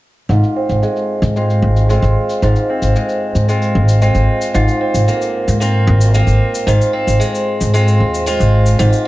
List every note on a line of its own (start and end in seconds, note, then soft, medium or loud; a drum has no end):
0.29 0.41 G#1 medium
0.29 2.42 G#2 medium
0.29 1.37 F4 medium
0.29 shaker soft
0.43 shaker soft
0.56 1.36 C4 soft
0.69 0.81 G#1 medium
0.69 shaker soft
0.83 1.36 G#3 medium
0.83 shaker soft
0.96 shaker soft
1.22 1.64 G#2 medium
1.22 shaker medium
1.36 1.89 G#3 medium
1.36 1.89 C4 soft
1.36 1.90 F4 medium
1.36 shaker soft
1.50 shaker soft
1.62 1.99 G#1 medium
1.76 shaker medium
1.89 2.95 G#3 medium
1.89 2.69 C4 medium
1.89 2.43 F4 medium
1.89 shaker soft
2.02 2.14 G#1 medium
2.02 shaker soft
2.30 shaker medium
2.42 2.54 G#1 medium
2.42 4.53 G#2 medium
2.42 3.49 F4 medium
2.42 shaker soft
2.56 shaker soft
2.70 3.49 C4 medium
2.82 2.93 G#1 medium
2.82 shaker medium
2.96 3.48 G#3 medium
2.96 shaker soft
3.09 shaker soft
3.35 3.77 G#2 medium
3.35 shaker medium
3.48 4.01 G#3 soft
3.48 4.02 C4 medium
3.48 4.03 F4 medium
3.48 shaker soft
3.62 shaker soft
3.75 4.12 G#1 medium
3.89 shaker medium
4.02 5.08 G#3 medium
4.02 4.80 C4 medium
4.02 4.54 F4 medium
4.02 shaker soft
4.15 4.26 G#1 medium
4.15 shaker soft
4.42 shaker medium
4.54 4.66 G#1 medium
4.54 6.66 G#2 medium
4.54 5.61 F4 medium
4.54 shaker soft
4.68 shaker soft
4.81 5.61 C4 medium
4.94 5.06 G#1 medium
4.94 shaker medium
5.08 5.59 A#3 medium
5.08 shaker soft
5.22 shaker soft
5.48 5.89 G#2 medium
5.48 shaker medium
5.60 6.13 A#3 medium
5.60 6.15 C4 medium
5.60 6.15 F4 medium
5.60 shaker soft
5.87 6.24 G#1 medium
6.01 shaker medium
6.14 6.73 A#3 medium
6.14 6.93 C4 medium
6.14 6.67 F4 medium
6.14 shaker soft
6.27 6.38 G#1 medium
6.27 shaker soft
6.55 shaker medium
6.67 6.78 G#1 medium
6.67 8.78 G#2 medium
6.67 7.74 F4 medium
6.67 shaker soft
6.81 shaker soft
6.93 7.74 C4 medium
7.07 7.18 G#1 medium
7.07 shaker medium
7.20 7.73 G#3 medium
7.20 shaker soft
7.35 shaker soft
7.61 7.97 G#2 medium
7.61 shaker medium
7.74 8.26 G#3 medium
7.74 8.27 C4 medium
7.74 8.27 F4 medium
7.74 shaker soft
7.88 shaker soft
8.00 8.37 D#2 medium
8.14 shaker medium
8.26 9.08 G#3 medium
8.26 9.05 C4 medium
8.26 8.79 F4 medium
8.26 shaker soft
8.40 8.77 G#1 medium
8.40 shaker soft
8.66 shaker medium
8.79 8.91 G#1 medium
8.79 9.08 G#2 medium
8.79 9.08 F4 medium
8.79 shaker soft
8.93 shaker soft